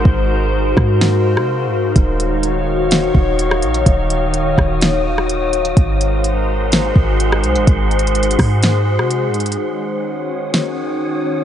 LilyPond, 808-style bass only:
\new Staff \with { instrumentName = "808-style bass" } { \clef bass \time 4/4 \key ees \dorian \tempo 4 = 126 aes,,4. aes,4~ aes,16 c8~ c32 aes,8~ aes,32 | ees,,2~ ees,,8 ees,,4 bes,,8 | ees,,4. ees,,2~ ees,,8 | aes,,2~ aes,,8 aes,,4 c,16 aes,,16 |
aes,,4. aes,4~ aes,16 c8~ c32 aes,8~ aes,32 | r1 | }